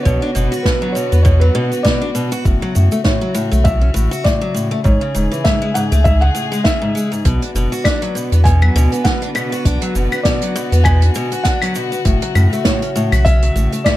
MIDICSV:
0, 0, Header, 1, 6, 480
1, 0, Start_track
1, 0, Tempo, 600000
1, 43, Time_signature, 4, 2, 24, 8
1, 11175, End_track
2, 0, Start_track
2, 0, Title_t, "Felt piano"
2, 0, Program_c, 0, 0
2, 22, Note_on_c, 0, 73, 96
2, 503, Note_on_c, 0, 71, 78
2, 527, Note_off_c, 0, 73, 0
2, 739, Note_on_c, 0, 73, 85
2, 761, Note_off_c, 0, 71, 0
2, 969, Note_off_c, 0, 73, 0
2, 981, Note_on_c, 0, 73, 89
2, 1116, Note_off_c, 0, 73, 0
2, 1118, Note_on_c, 0, 71, 88
2, 1465, Note_on_c, 0, 74, 89
2, 1484, Note_off_c, 0, 71, 0
2, 1822, Note_off_c, 0, 74, 0
2, 2432, Note_on_c, 0, 73, 76
2, 2914, Note_on_c, 0, 76, 93
2, 2932, Note_off_c, 0, 73, 0
2, 3394, Note_on_c, 0, 74, 88
2, 3413, Note_off_c, 0, 76, 0
2, 3846, Note_off_c, 0, 74, 0
2, 3875, Note_on_c, 0, 73, 90
2, 4355, Note_on_c, 0, 76, 93
2, 4374, Note_off_c, 0, 73, 0
2, 4594, Note_on_c, 0, 78, 97
2, 4606, Note_off_c, 0, 76, 0
2, 4649, Note_off_c, 0, 78, 0
2, 4834, Note_on_c, 0, 76, 101
2, 4963, Note_off_c, 0, 76, 0
2, 4969, Note_on_c, 0, 78, 111
2, 5314, Note_on_c, 0, 76, 92
2, 5329, Note_off_c, 0, 78, 0
2, 5667, Note_off_c, 0, 76, 0
2, 6274, Note_on_c, 0, 74, 80
2, 6751, Note_on_c, 0, 80, 112
2, 6773, Note_off_c, 0, 74, 0
2, 7234, Note_on_c, 0, 78, 90
2, 7252, Note_off_c, 0, 80, 0
2, 7686, Note_off_c, 0, 78, 0
2, 8187, Note_on_c, 0, 74, 85
2, 8671, Note_on_c, 0, 80, 103
2, 8690, Note_off_c, 0, 74, 0
2, 9149, Note_on_c, 0, 78, 90
2, 9172, Note_off_c, 0, 80, 0
2, 9604, Note_off_c, 0, 78, 0
2, 10115, Note_on_c, 0, 73, 86
2, 10567, Note_off_c, 0, 73, 0
2, 10597, Note_on_c, 0, 76, 112
2, 11075, Note_on_c, 0, 74, 97
2, 11095, Note_off_c, 0, 76, 0
2, 11175, Note_off_c, 0, 74, 0
2, 11175, End_track
3, 0, Start_track
3, 0, Title_t, "String quartet"
3, 0, Program_c, 1, 48
3, 0, Note_on_c, 1, 50, 78
3, 0, Note_on_c, 1, 59, 76
3, 0, Note_on_c, 1, 66, 90
3, 1935, Note_off_c, 1, 59, 0
3, 1937, Note_off_c, 1, 50, 0
3, 1964, Note_on_c, 1, 49, 82
3, 3855, Note_off_c, 1, 66, 0
3, 3884, Note_on_c, 1, 68, 88
3, 5772, Note_off_c, 1, 49, 0
3, 5785, Note_off_c, 1, 68, 0
3, 5805, Note_on_c, 1, 66, 94
3, 5806, Note_on_c, 1, 50, 75
3, 5810, Note_on_c, 1, 59, 77
3, 9612, Note_off_c, 1, 50, 0
3, 9615, Note_off_c, 1, 59, 0
3, 9642, Note_on_c, 1, 49, 85
3, 11175, Note_off_c, 1, 49, 0
3, 11175, Note_off_c, 1, 66, 0
3, 11175, End_track
4, 0, Start_track
4, 0, Title_t, "Steel-string acoustic guitar"
4, 0, Program_c, 2, 25
4, 43, Note_on_c, 2, 47, 90
4, 164, Note_off_c, 2, 47, 0
4, 177, Note_on_c, 2, 62, 79
4, 238, Note_off_c, 2, 62, 0
4, 279, Note_on_c, 2, 47, 83
4, 409, Note_off_c, 2, 47, 0
4, 415, Note_on_c, 2, 66, 89
4, 511, Note_off_c, 2, 66, 0
4, 526, Note_on_c, 2, 47, 71
4, 652, Note_off_c, 2, 47, 0
4, 655, Note_on_c, 2, 54, 73
4, 751, Note_off_c, 2, 54, 0
4, 761, Note_on_c, 2, 47, 71
4, 883, Note_off_c, 2, 47, 0
4, 897, Note_on_c, 2, 59, 69
4, 958, Note_off_c, 2, 59, 0
4, 998, Note_on_c, 2, 47, 83
4, 1122, Note_off_c, 2, 47, 0
4, 1131, Note_on_c, 2, 54, 70
4, 1229, Note_off_c, 2, 54, 0
4, 1238, Note_on_c, 2, 47, 104
4, 1362, Note_off_c, 2, 47, 0
4, 1373, Note_on_c, 2, 59, 63
4, 1470, Note_off_c, 2, 59, 0
4, 1476, Note_on_c, 2, 47, 102
4, 1601, Note_off_c, 2, 47, 0
4, 1612, Note_on_c, 2, 62, 76
4, 1675, Note_off_c, 2, 62, 0
4, 1718, Note_on_c, 2, 47, 88
4, 1849, Note_off_c, 2, 47, 0
4, 1855, Note_on_c, 2, 66, 99
4, 1951, Note_off_c, 2, 66, 0
4, 1965, Note_on_c, 2, 45, 72
4, 2092, Note_off_c, 2, 45, 0
4, 2098, Note_on_c, 2, 54, 78
4, 2193, Note_off_c, 2, 54, 0
4, 2200, Note_on_c, 2, 45, 66
4, 2322, Note_off_c, 2, 45, 0
4, 2335, Note_on_c, 2, 57, 66
4, 2397, Note_off_c, 2, 57, 0
4, 2435, Note_on_c, 2, 45, 82
4, 2560, Note_off_c, 2, 45, 0
4, 2571, Note_on_c, 2, 54, 69
4, 2670, Note_off_c, 2, 54, 0
4, 2676, Note_on_c, 2, 45, 88
4, 2801, Note_off_c, 2, 45, 0
4, 2812, Note_on_c, 2, 57, 74
4, 2910, Note_off_c, 2, 57, 0
4, 2918, Note_on_c, 2, 45, 98
4, 3042, Note_off_c, 2, 45, 0
4, 3051, Note_on_c, 2, 61, 63
4, 3115, Note_off_c, 2, 61, 0
4, 3152, Note_on_c, 2, 45, 102
4, 3286, Note_off_c, 2, 45, 0
4, 3290, Note_on_c, 2, 66, 88
4, 3389, Note_off_c, 2, 66, 0
4, 3395, Note_on_c, 2, 45, 80
4, 3527, Note_off_c, 2, 45, 0
4, 3532, Note_on_c, 2, 54, 71
4, 3630, Note_off_c, 2, 54, 0
4, 3636, Note_on_c, 2, 45, 68
4, 3760, Note_off_c, 2, 45, 0
4, 3769, Note_on_c, 2, 57, 78
4, 3834, Note_off_c, 2, 57, 0
4, 3873, Note_on_c, 2, 44, 77
4, 3999, Note_off_c, 2, 44, 0
4, 4010, Note_on_c, 2, 49, 73
4, 4109, Note_off_c, 2, 49, 0
4, 4116, Note_on_c, 2, 44, 87
4, 4241, Note_off_c, 2, 44, 0
4, 4252, Note_on_c, 2, 52, 67
4, 4350, Note_off_c, 2, 52, 0
4, 4357, Note_on_c, 2, 44, 98
4, 4481, Note_off_c, 2, 44, 0
4, 4493, Note_on_c, 2, 56, 72
4, 4556, Note_off_c, 2, 56, 0
4, 4601, Note_on_c, 2, 44, 93
4, 4730, Note_off_c, 2, 44, 0
4, 4735, Note_on_c, 2, 57, 93
4, 4831, Note_off_c, 2, 57, 0
4, 4841, Note_on_c, 2, 44, 77
4, 4970, Note_off_c, 2, 44, 0
4, 4974, Note_on_c, 2, 49, 66
4, 5071, Note_off_c, 2, 49, 0
4, 5077, Note_on_c, 2, 45, 79
4, 5201, Note_off_c, 2, 45, 0
4, 5213, Note_on_c, 2, 56, 81
4, 5311, Note_off_c, 2, 56, 0
4, 5318, Note_on_c, 2, 49, 81
4, 5442, Note_off_c, 2, 49, 0
4, 5453, Note_on_c, 2, 44, 76
4, 5550, Note_off_c, 2, 44, 0
4, 5559, Note_on_c, 2, 56, 73
4, 5682, Note_off_c, 2, 56, 0
4, 5693, Note_on_c, 2, 44, 72
4, 5790, Note_off_c, 2, 44, 0
4, 5801, Note_on_c, 2, 47, 91
4, 5923, Note_off_c, 2, 47, 0
4, 5938, Note_on_c, 2, 62, 70
4, 5998, Note_off_c, 2, 62, 0
4, 6044, Note_on_c, 2, 47, 87
4, 6172, Note_off_c, 2, 47, 0
4, 6177, Note_on_c, 2, 66, 94
4, 6272, Note_off_c, 2, 66, 0
4, 6282, Note_on_c, 2, 62, 89
4, 6403, Note_off_c, 2, 62, 0
4, 6416, Note_on_c, 2, 54, 76
4, 6512, Note_off_c, 2, 54, 0
4, 6521, Note_on_c, 2, 47, 69
4, 6643, Note_off_c, 2, 47, 0
4, 6659, Note_on_c, 2, 59, 70
4, 6718, Note_off_c, 2, 59, 0
4, 6763, Note_on_c, 2, 47, 75
4, 6884, Note_off_c, 2, 47, 0
4, 6894, Note_on_c, 2, 54, 61
4, 6991, Note_off_c, 2, 54, 0
4, 7005, Note_on_c, 2, 47, 108
4, 7125, Note_off_c, 2, 47, 0
4, 7136, Note_on_c, 2, 59, 60
4, 7232, Note_off_c, 2, 59, 0
4, 7237, Note_on_c, 2, 47, 96
4, 7361, Note_off_c, 2, 47, 0
4, 7375, Note_on_c, 2, 62, 71
4, 7436, Note_off_c, 2, 62, 0
4, 7479, Note_on_c, 2, 47, 93
4, 7609, Note_off_c, 2, 47, 0
4, 7618, Note_on_c, 2, 66, 91
4, 7713, Note_off_c, 2, 66, 0
4, 7723, Note_on_c, 2, 62, 88
4, 7844, Note_off_c, 2, 62, 0
4, 7855, Note_on_c, 2, 54, 76
4, 7951, Note_off_c, 2, 54, 0
4, 7961, Note_on_c, 2, 47, 64
4, 8083, Note_off_c, 2, 47, 0
4, 8096, Note_on_c, 2, 59, 71
4, 8157, Note_off_c, 2, 59, 0
4, 8204, Note_on_c, 2, 47, 83
4, 8325, Note_off_c, 2, 47, 0
4, 8340, Note_on_c, 2, 54, 72
4, 8434, Note_off_c, 2, 54, 0
4, 8445, Note_on_c, 2, 47, 91
4, 8565, Note_off_c, 2, 47, 0
4, 8578, Note_on_c, 2, 59, 71
4, 8673, Note_off_c, 2, 59, 0
4, 8684, Note_on_c, 2, 47, 96
4, 8804, Note_off_c, 2, 47, 0
4, 8817, Note_on_c, 2, 62, 68
4, 8877, Note_off_c, 2, 62, 0
4, 8924, Note_on_c, 2, 47, 105
4, 9051, Note_off_c, 2, 47, 0
4, 9055, Note_on_c, 2, 66, 84
4, 9151, Note_off_c, 2, 66, 0
4, 9162, Note_on_c, 2, 62, 93
4, 9284, Note_off_c, 2, 62, 0
4, 9299, Note_on_c, 2, 54, 77
4, 9393, Note_off_c, 2, 54, 0
4, 9405, Note_on_c, 2, 47, 75
4, 9525, Note_off_c, 2, 47, 0
4, 9535, Note_on_c, 2, 59, 75
4, 9597, Note_off_c, 2, 59, 0
4, 9640, Note_on_c, 2, 45, 80
4, 9763, Note_off_c, 2, 45, 0
4, 9777, Note_on_c, 2, 54, 76
4, 9873, Note_off_c, 2, 54, 0
4, 9882, Note_on_c, 2, 45, 84
4, 10004, Note_off_c, 2, 45, 0
4, 10022, Note_on_c, 2, 57, 72
4, 10115, Note_off_c, 2, 57, 0
4, 10122, Note_on_c, 2, 45, 94
4, 10244, Note_off_c, 2, 45, 0
4, 10259, Note_on_c, 2, 61, 71
4, 10319, Note_off_c, 2, 61, 0
4, 10365, Note_on_c, 2, 45, 98
4, 10492, Note_off_c, 2, 45, 0
4, 10498, Note_on_c, 2, 66, 92
4, 10593, Note_off_c, 2, 66, 0
4, 10605, Note_on_c, 2, 61, 90
4, 10725, Note_off_c, 2, 61, 0
4, 10741, Note_on_c, 2, 54, 64
4, 10834, Note_off_c, 2, 54, 0
4, 10844, Note_on_c, 2, 45, 77
4, 10965, Note_off_c, 2, 45, 0
4, 10979, Note_on_c, 2, 57, 72
4, 11039, Note_off_c, 2, 57, 0
4, 11085, Note_on_c, 2, 45, 84
4, 11175, Note_off_c, 2, 45, 0
4, 11175, End_track
5, 0, Start_track
5, 0, Title_t, "Sub bass"
5, 0, Program_c, 3, 38
5, 45, Note_on_c, 3, 35, 101
5, 146, Note_off_c, 3, 35, 0
5, 286, Note_on_c, 3, 30, 89
5, 386, Note_off_c, 3, 30, 0
5, 899, Note_on_c, 3, 40, 89
5, 1202, Note_off_c, 3, 40, 0
5, 1964, Note_on_c, 3, 30, 100
5, 2065, Note_off_c, 3, 30, 0
5, 2209, Note_on_c, 3, 42, 99
5, 2308, Note_off_c, 3, 42, 0
5, 2819, Note_on_c, 3, 35, 93
5, 3122, Note_off_c, 3, 35, 0
5, 3169, Note_on_c, 3, 33, 87
5, 3267, Note_off_c, 3, 33, 0
5, 3885, Note_on_c, 3, 33, 102
5, 3985, Note_off_c, 3, 33, 0
5, 4127, Note_on_c, 3, 28, 92
5, 4227, Note_off_c, 3, 28, 0
5, 4736, Note_on_c, 3, 37, 90
5, 5041, Note_off_c, 3, 37, 0
5, 5802, Note_on_c, 3, 35, 100
5, 5904, Note_off_c, 3, 35, 0
5, 6039, Note_on_c, 3, 30, 94
5, 6143, Note_off_c, 3, 30, 0
5, 6657, Note_on_c, 3, 40, 88
5, 6961, Note_off_c, 3, 40, 0
5, 7003, Note_on_c, 3, 38, 85
5, 7105, Note_off_c, 3, 38, 0
5, 7723, Note_on_c, 3, 35, 105
5, 7825, Note_off_c, 3, 35, 0
5, 7962, Note_on_c, 3, 30, 97
5, 8064, Note_off_c, 3, 30, 0
5, 8577, Note_on_c, 3, 40, 92
5, 8881, Note_off_c, 3, 40, 0
5, 9645, Note_on_c, 3, 30, 97
5, 9746, Note_off_c, 3, 30, 0
5, 9882, Note_on_c, 3, 42, 97
5, 9984, Note_off_c, 3, 42, 0
5, 10497, Note_on_c, 3, 35, 97
5, 10801, Note_off_c, 3, 35, 0
5, 10844, Note_on_c, 3, 33, 87
5, 10945, Note_off_c, 3, 33, 0
5, 11175, End_track
6, 0, Start_track
6, 0, Title_t, "Drums"
6, 46, Note_on_c, 9, 36, 99
6, 54, Note_on_c, 9, 82, 51
6, 126, Note_off_c, 9, 36, 0
6, 134, Note_off_c, 9, 82, 0
6, 290, Note_on_c, 9, 82, 78
6, 370, Note_off_c, 9, 82, 0
6, 424, Note_on_c, 9, 82, 53
6, 504, Note_off_c, 9, 82, 0
6, 525, Note_on_c, 9, 36, 96
6, 525, Note_on_c, 9, 38, 94
6, 533, Note_on_c, 9, 82, 47
6, 605, Note_off_c, 9, 36, 0
6, 605, Note_off_c, 9, 38, 0
6, 613, Note_off_c, 9, 82, 0
6, 771, Note_on_c, 9, 82, 82
6, 851, Note_off_c, 9, 82, 0
6, 901, Note_on_c, 9, 82, 56
6, 981, Note_off_c, 9, 82, 0
6, 1005, Note_on_c, 9, 36, 103
6, 1006, Note_on_c, 9, 82, 48
6, 1085, Note_off_c, 9, 36, 0
6, 1086, Note_off_c, 9, 82, 0
6, 1380, Note_on_c, 9, 82, 50
6, 1460, Note_off_c, 9, 82, 0
6, 1484, Note_on_c, 9, 36, 91
6, 1488, Note_on_c, 9, 82, 47
6, 1489, Note_on_c, 9, 38, 90
6, 1564, Note_off_c, 9, 36, 0
6, 1568, Note_off_c, 9, 82, 0
6, 1569, Note_off_c, 9, 38, 0
6, 1724, Note_on_c, 9, 82, 88
6, 1804, Note_off_c, 9, 82, 0
6, 1856, Note_on_c, 9, 82, 54
6, 1936, Note_off_c, 9, 82, 0
6, 1963, Note_on_c, 9, 36, 112
6, 1965, Note_on_c, 9, 82, 51
6, 2043, Note_off_c, 9, 36, 0
6, 2045, Note_off_c, 9, 82, 0
6, 2206, Note_on_c, 9, 82, 81
6, 2286, Note_off_c, 9, 82, 0
6, 2336, Note_on_c, 9, 82, 56
6, 2416, Note_off_c, 9, 82, 0
6, 2437, Note_on_c, 9, 38, 99
6, 2443, Note_on_c, 9, 36, 98
6, 2450, Note_on_c, 9, 82, 49
6, 2517, Note_off_c, 9, 38, 0
6, 2523, Note_off_c, 9, 36, 0
6, 2530, Note_off_c, 9, 82, 0
6, 2682, Note_on_c, 9, 82, 82
6, 2762, Note_off_c, 9, 82, 0
6, 2823, Note_on_c, 9, 82, 56
6, 2903, Note_off_c, 9, 82, 0
6, 2923, Note_on_c, 9, 36, 103
6, 2933, Note_on_c, 9, 82, 44
6, 3003, Note_off_c, 9, 36, 0
6, 3013, Note_off_c, 9, 82, 0
6, 3171, Note_on_c, 9, 82, 88
6, 3251, Note_off_c, 9, 82, 0
6, 3301, Note_on_c, 9, 82, 58
6, 3381, Note_off_c, 9, 82, 0
6, 3403, Note_on_c, 9, 36, 95
6, 3405, Note_on_c, 9, 38, 87
6, 3414, Note_on_c, 9, 82, 50
6, 3483, Note_off_c, 9, 36, 0
6, 3485, Note_off_c, 9, 38, 0
6, 3494, Note_off_c, 9, 82, 0
6, 3653, Note_on_c, 9, 82, 85
6, 3733, Note_off_c, 9, 82, 0
6, 3884, Note_on_c, 9, 36, 105
6, 3885, Note_on_c, 9, 82, 51
6, 3964, Note_off_c, 9, 36, 0
6, 3965, Note_off_c, 9, 82, 0
6, 4125, Note_on_c, 9, 82, 82
6, 4205, Note_off_c, 9, 82, 0
6, 4265, Note_on_c, 9, 82, 54
6, 4345, Note_off_c, 9, 82, 0
6, 4362, Note_on_c, 9, 38, 92
6, 4364, Note_on_c, 9, 36, 100
6, 4369, Note_on_c, 9, 82, 45
6, 4442, Note_off_c, 9, 38, 0
6, 4444, Note_off_c, 9, 36, 0
6, 4449, Note_off_c, 9, 82, 0
6, 4609, Note_on_c, 9, 82, 95
6, 4689, Note_off_c, 9, 82, 0
6, 4741, Note_on_c, 9, 82, 53
6, 4821, Note_off_c, 9, 82, 0
6, 4844, Note_on_c, 9, 36, 100
6, 4845, Note_on_c, 9, 82, 47
6, 4924, Note_off_c, 9, 36, 0
6, 4925, Note_off_c, 9, 82, 0
6, 5087, Note_on_c, 9, 82, 86
6, 5167, Note_off_c, 9, 82, 0
6, 5224, Note_on_c, 9, 82, 55
6, 5304, Note_off_c, 9, 82, 0
6, 5317, Note_on_c, 9, 38, 88
6, 5324, Note_on_c, 9, 36, 95
6, 5332, Note_on_c, 9, 82, 49
6, 5397, Note_off_c, 9, 38, 0
6, 5404, Note_off_c, 9, 36, 0
6, 5412, Note_off_c, 9, 82, 0
6, 5578, Note_on_c, 9, 82, 83
6, 5658, Note_off_c, 9, 82, 0
6, 5704, Note_on_c, 9, 82, 56
6, 5784, Note_off_c, 9, 82, 0
6, 5798, Note_on_c, 9, 42, 75
6, 5804, Note_on_c, 9, 36, 109
6, 5808, Note_on_c, 9, 82, 46
6, 5878, Note_off_c, 9, 42, 0
6, 5884, Note_off_c, 9, 36, 0
6, 5888, Note_off_c, 9, 82, 0
6, 5938, Note_on_c, 9, 42, 48
6, 6018, Note_off_c, 9, 42, 0
6, 6048, Note_on_c, 9, 82, 81
6, 6128, Note_off_c, 9, 82, 0
6, 6184, Note_on_c, 9, 82, 59
6, 6264, Note_off_c, 9, 82, 0
6, 6279, Note_on_c, 9, 75, 75
6, 6283, Note_on_c, 9, 36, 97
6, 6283, Note_on_c, 9, 42, 77
6, 6287, Note_on_c, 9, 38, 93
6, 6291, Note_on_c, 9, 82, 48
6, 6359, Note_off_c, 9, 75, 0
6, 6363, Note_off_c, 9, 36, 0
6, 6363, Note_off_c, 9, 42, 0
6, 6367, Note_off_c, 9, 38, 0
6, 6371, Note_off_c, 9, 82, 0
6, 6415, Note_on_c, 9, 42, 57
6, 6495, Note_off_c, 9, 42, 0
6, 6534, Note_on_c, 9, 82, 86
6, 6614, Note_off_c, 9, 82, 0
6, 6655, Note_on_c, 9, 42, 52
6, 6664, Note_on_c, 9, 82, 51
6, 6735, Note_off_c, 9, 42, 0
6, 6744, Note_off_c, 9, 82, 0
6, 6763, Note_on_c, 9, 36, 97
6, 6769, Note_on_c, 9, 42, 73
6, 6776, Note_on_c, 9, 82, 46
6, 6843, Note_off_c, 9, 36, 0
6, 6849, Note_off_c, 9, 42, 0
6, 6856, Note_off_c, 9, 82, 0
6, 6899, Note_on_c, 9, 75, 70
6, 6979, Note_off_c, 9, 75, 0
6, 7019, Note_on_c, 9, 82, 92
6, 7099, Note_off_c, 9, 82, 0
6, 7136, Note_on_c, 9, 42, 41
6, 7152, Note_on_c, 9, 82, 48
6, 7216, Note_off_c, 9, 42, 0
6, 7232, Note_off_c, 9, 82, 0
6, 7241, Note_on_c, 9, 42, 67
6, 7243, Note_on_c, 9, 36, 94
6, 7246, Note_on_c, 9, 38, 82
6, 7249, Note_on_c, 9, 82, 43
6, 7321, Note_off_c, 9, 42, 0
6, 7323, Note_off_c, 9, 36, 0
6, 7326, Note_off_c, 9, 38, 0
6, 7329, Note_off_c, 9, 82, 0
6, 7375, Note_on_c, 9, 42, 54
6, 7455, Note_off_c, 9, 42, 0
6, 7485, Note_on_c, 9, 75, 79
6, 7491, Note_on_c, 9, 82, 77
6, 7565, Note_off_c, 9, 75, 0
6, 7571, Note_off_c, 9, 82, 0
6, 7624, Note_on_c, 9, 82, 57
6, 7704, Note_off_c, 9, 82, 0
6, 7722, Note_on_c, 9, 42, 79
6, 7723, Note_on_c, 9, 36, 98
6, 7729, Note_on_c, 9, 82, 49
6, 7802, Note_off_c, 9, 42, 0
6, 7803, Note_off_c, 9, 36, 0
6, 7809, Note_off_c, 9, 82, 0
6, 7850, Note_on_c, 9, 42, 45
6, 7930, Note_off_c, 9, 42, 0
6, 7964, Note_on_c, 9, 82, 77
6, 8044, Note_off_c, 9, 82, 0
6, 8099, Note_on_c, 9, 75, 73
6, 8101, Note_on_c, 9, 82, 51
6, 8179, Note_off_c, 9, 75, 0
6, 8181, Note_off_c, 9, 82, 0
6, 8198, Note_on_c, 9, 42, 68
6, 8200, Note_on_c, 9, 38, 102
6, 8203, Note_on_c, 9, 36, 94
6, 8210, Note_on_c, 9, 82, 49
6, 8278, Note_off_c, 9, 42, 0
6, 8280, Note_off_c, 9, 38, 0
6, 8283, Note_off_c, 9, 36, 0
6, 8290, Note_off_c, 9, 82, 0
6, 8331, Note_on_c, 9, 42, 52
6, 8411, Note_off_c, 9, 42, 0
6, 8450, Note_on_c, 9, 82, 83
6, 8530, Note_off_c, 9, 82, 0
6, 8580, Note_on_c, 9, 42, 47
6, 8585, Note_on_c, 9, 82, 57
6, 8660, Note_off_c, 9, 42, 0
6, 8665, Note_off_c, 9, 82, 0
6, 8679, Note_on_c, 9, 75, 78
6, 8683, Note_on_c, 9, 36, 90
6, 8686, Note_on_c, 9, 82, 43
6, 8759, Note_off_c, 9, 75, 0
6, 8763, Note_off_c, 9, 36, 0
6, 8766, Note_off_c, 9, 82, 0
6, 8813, Note_on_c, 9, 42, 51
6, 8893, Note_off_c, 9, 42, 0
6, 8918, Note_on_c, 9, 82, 72
6, 8998, Note_off_c, 9, 82, 0
6, 9051, Note_on_c, 9, 42, 42
6, 9062, Note_on_c, 9, 82, 47
6, 9131, Note_off_c, 9, 42, 0
6, 9142, Note_off_c, 9, 82, 0
6, 9155, Note_on_c, 9, 42, 64
6, 9156, Note_on_c, 9, 38, 79
6, 9164, Note_on_c, 9, 36, 89
6, 9164, Note_on_c, 9, 82, 40
6, 9235, Note_off_c, 9, 42, 0
6, 9236, Note_off_c, 9, 38, 0
6, 9244, Note_off_c, 9, 36, 0
6, 9244, Note_off_c, 9, 82, 0
6, 9293, Note_on_c, 9, 75, 80
6, 9295, Note_on_c, 9, 42, 60
6, 9373, Note_off_c, 9, 75, 0
6, 9375, Note_off_c, 9, 42, 0
6, 9400, Note_on_c, 9, 82, 87
6, 9480, Note_off_c, 9, 82, 0
6, 9543, Note_on_c, 9, 82, 56
6, 9623, Note_off_c, 9, 82, 0
6, 9642, Note_on_c, 9, 42, 73
6, 9644, Note_on_c, 9, 36, 100
6, 9649, Note_on_c, 9, 82, 49
6, 9722, Note_off_c, 9, 42, 0
6, 9724, Note_off_c, 9, 36, 0
6, 9729, Note_off_c, 9, 82, 0
6, 9775, Note_on_c, 9, 42, 57
6, 9855, Note_off_c, 9, 42, 0
6, 9883, Note_on_c, 9, 75, 71
6, 9889, Note_on_c, 9, 82, 72
6, 9963, Note_off_c, 9, 75, 0
6, 9969, Note_off_c, 9, 82, 0
6, 10025, Note_on_c, 9, 82, 53
6, 10105, Note_off_c, 9, 82, 0
6, 10119, Note_on_c, 9, 38, 102
6, 10121, Note_on_c, 9, 42, 75
6, 10125, Note_on_c, 9, 36, 90
6, 10132, Note_on_c, 9, 82, 54
6, 10199, Note_off_c, 9, 38, 0
6, 10201, Note_off_c, 9, 42, 0
6, 10205, Note_off_c, 9, 36, 0
6, 10212, Note_off_c, 9, 82, 0
6, 10255, Note_on_c, 9, 42, 57
6, 10335, Note_off_c, 9, 42, 0
6, 10372, Note_on_c, 9, 82, 83
6, 10452, Note_off_c, 9, 82, 0
6, 10499, Note_on_c, 9, 75, 82
6, 10500, Note_on_c, 9, 42, 48
6, 10505, Note_on_c, 9, 82, 60
6, 10579, Note_off_c, 9, 75, 0
6, 10580, Note_off_c, 9, 42, 0
6, 10585, Note_off_c, 9, 82, 0
6, 10606, Note_on_c, 9, 36, 93
6, 10606, Note_on_c, 9, 42, 75
6, 10614, Note_on_c, 9, 82, 43
6, 10686, Note_off_c, 9, 36, 0
6, 10686, Note_off_c, 9, 42, 0
6, 10694, Note_off_c, 9, 82, 0
6, 10737, Note_on_c, 9, 42, 54
6, 10817, Note_off_c, 9, 42, 0
6, 10854, Note_on_c, 9, 82, 77
6, 10934, Note_off_c, 9, 82, 0
6, 10981, Note_on_c, 9, 42, 41
6, 10987, Note_on_c, 9, 82, 49
6, 11061, Note_off_c, 9, 42, 0
6, 11067, Note_off_c, 9, 82, 0
6, 11084, Note_on_c, 9, 42, 66
6, 11086, Note_on_c, 9, 36, 87
6, 11087, Note_on_c, 9, 38, 97
6, 11089, Note_on_c, 9, 75, 76
6, 11093, Note_on_c, 9, 82, 46
6, 11164, Note_off_c, 9, 42, 0
6, 11166, Note_off_c, 9, 36, 0
6, 11167, Note_off_c, 9, 38, 0
6, 11169, Note_off_c, 9, 75, 0
6, 11173, Note_off_c, 9, 82, 0
6, 11175, End_track
0, 0, End_of_file